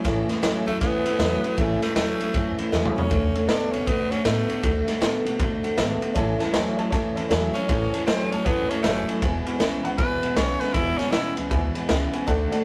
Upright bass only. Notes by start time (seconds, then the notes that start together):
0.05 A1
0.29 muted upright bass stroke
0.42 E2
0.67 F#2
0.81 F#2
1.05 E2
1.19 E2
1.58 A1
1.95 E2
2.34 F#2
2.58 muted upright bass stroke
2.72 E2
2.97 muted upright bass stroke
3.11 D2
3.36 muted upright bass stroke
3.49 A2
3.74 B2
3.87 B2
4.11 A2
4.25 A2
4.50 muted upright bass stroke
4.63 D2
5.01 A2
5.25 B2
5.40 B2
5.64 muted upright bass stroke
5.77 G#1
6.15 A1
6.40 muted upright bass stroke
6.54 E2
6.78 F#2
7.16 E2
7.30 E2
7.69 A1
8.07 E2
8.32 F#2
8.46 F#2
8.84 F#1
9.08 muted upright bass stroke
9.22 E1
9.60 B1
9.84 C#2
9.98 D2
10.22 B1
10.36 B1
10.75 E1
10.98 muted upright bass stroke
11.13 B1
11.37 C#2
11.51 D2
11.76 muted upright bass stroke
11.89 C#2
12.14 muted upright bass stroke
12.28 D2
12.52 muted upright bass stroke